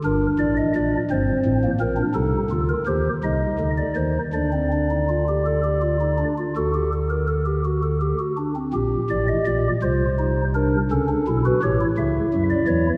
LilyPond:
<<
  \new Staff \with { instrumentName = "Pipe organ" } { \time 12/8 \key g \minor \tempo 4. = 56 << { bes'8 d''16 ees''16 d''8 c''4 bes'8 a'8. bes'16 c''8 ees''8. d''16 c''8 | d''2. a'2~ a'8 r8 | r8 d''16 ees''16 d''8 c''4 bes'8 a'8. b'16 cis''8 e''8. d''16 cis''8 | } \\ { d'4. c'8. bes16 c'16 d'16 ees'8 f'8 g'8 ees'4. | d'16 c'16 d'16 ees'16 f'16 g'16 a'16 g'16 f'16 ees'16 d'16 f'16 fis'16 g'16 a'16 bes'16 a'16 g'16 fis'16 a'16 g'16 fis'16 d'16 c'16 | g'4. f'8 ees'8 d'8 cis'16 d'16 e'16 fis'16 g'16 e'4.~ e'16 | } >> }
  \new Staff \with { instrumentName = "Pipe organ" } { \clef bass \time 12/8 \key g \minor <g,, g,>8 <a,, a,>8 <bes,, bes,>8 <g,, g,>8 <a,, a,>8 <bes,, bes,>8 <c, c>8 <d, d>8 <ees, ees>8 <c, c>8 <d, d>8 <ees, ees>8 | <d, d>2. <d, d>2~ <d, d>8 r8 | <bes,, bes,>8 <a,, a,>8 <bes,, bes,>8 <c, c>4. <cis, cis>8 <b,, b,>8 <a,, a,>8 <cis, cis>8 <fis, fis>8 <e, e>8 | }
>>